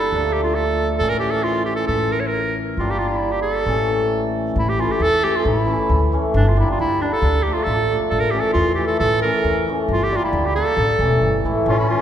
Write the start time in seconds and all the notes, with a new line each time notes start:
Already playing: G1 G3 A#3 D4 A4
0.12 D2 F3 A3 D4
0.33 G4
0.43 F4
0.55 A4
0.98 A1 E3 A4
1.03 C#4
1.09 A#4
1.19 G4
1.31 A4
1.43 F4
1.65 G4
1.76 A4
1.87 A1 A4
2.12 A#4
2.20 C#5
2.27 A#4
2.77 G1 G3 A#3 D4 F4
2.90 G4
2.99 F4
3.08 E4
3.32 G4
3.42 A4
3.66 A1 E3 A3 C#4
4.56 A1 E4
4.69 G4
4.78 E3 A3 C#4 F4
4.91 G4
5.00 E2 A4
5.22 E3 A3 C#4 G4
5.36 F4
5.45 A1 E4
5.66 E3 A3 C#4
5.89 D2
6.12 E3 A3 C#4
6.34 G1 D4
6.48 F4
6.57 G3 A#3 D4 E4
6.71 F4
6.79 D2 E4
7.01 G3 A#3 D4
7.13 A4
7.22 D2
7.43 F3 D4 G4
7.48 A3
7.53 F4
7.64 A1 A4
7.90 F3 A3 D4
8.10 A1 A4
8.20 A#4
8.31 E3 A3 C#4 G4
8.40 A4
8.53 E2 F4
8.75 G4
8.79 E3 A3 E4
8.87 A4
9.00 A1 A4
9.22 E3 A3 C#4 A#4
9.44 E2
9.68 E3 A3 C#4
9.88 G1 F4
10.03 G4
10.11 G3 A#3 D4
10.16 F4
10.24 E4
10.33 D2
10.46 G4
10.56 G3 A#3 D4 A4
10.77 A1
10.99 E1 E3 A3 C#4
11.21 G1
11.44 A1 E3 A3 E4
11.66 A1 C#4 F4
11.79 E4
11.89 E3 A3 C#4 F4